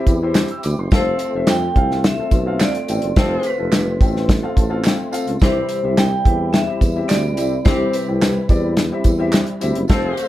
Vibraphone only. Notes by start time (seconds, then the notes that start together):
0.96 C5
1.50 G5
2.06 E5
2.64 D5
3.18 C5
3.40 C5
3.46 B4
5.43 C5
5.98 G5
6.53 E5
7.08 D5
7.65 C5
7.94 B4
9.93 C5